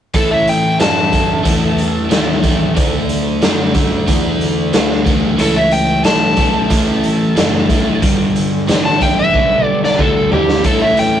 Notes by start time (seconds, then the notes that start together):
0.14 A2 E3 A3 E4 A4, kick, closed hi-hat
0.31 C#5 E5
0.47 E5 G5, closed hi-hat
0.79 F#2 A2 E3 A3 E5 A5, snare, closed hi-hat
1.11 A2 E3 A3, kick, closed hi-hat
1.44 E2 A2 E3 A3, kick, closed hi-hat
1.78 closed hi-hat
2.09 D#2 A2 E3 A3, snare, closed hi-hat
2.42 A2 E3 A3, kick, closed hi-hat
2.75 D2 D3 A3 D4, kick, closed hi-hat
3.09 closed hi-hat
3.41 F#2 D3 A3 D4, snare, closed hi-hat
3.74 D3 A3 D4, kick, closed hi-hat
4.07 E2 D3 A3 D4, kick, closed hi-hat
4.41 closed hi-hat
4.73 D2 D3 A3 D4, snare, closed hi-hat
5.05 A2 E3 A3, kick, closed hi-hat
5.37 C#2 A2 E3 A3, closed hi-hat
5.41 E4 A4
5.56 C#5 E5
5.71 E5 G5, closed hi-hat
6.03 B1 A2 E3 A3 E5 A5, snare, closed hi-hat
6.36 A2 E3 A3, kick, closed hi-hat
6.69 A1 A2 E3 A3, kick, closed hi-hat
7.03 closed hi-hat
7.35 F#1 A2 E3 A3, snare, closed hi-hat
7.69 A2 E3 A3, kick, closed hi-hat
8.01 G1 G2 D3 G3, kick, closed hi-hat
8.36 closed hi-hat
8.67 A1 G2 D3 G3, snare, closed hi-hat
8.85 F#5 A5
8.99 G2 D3 G3 E5 G5, kick, closed hi-hat
9.19 B4 E5
9.33 B1 G2 D3 G3, kick, high tom
9.51 high tom
9.62 A4 D5
9.84 B4 D5, snare
9.98 D2 G2 D3 G3 A4, kick
10.02 D4
10.31 G2 D3 G3 E4 G4, floor tom
10.49 snare
10.64 A2 E3 A3 E4 A4, kick, closed hi-hat
10.82 C#5 E5
10.97 G5, closed hi-hat
11.02 E5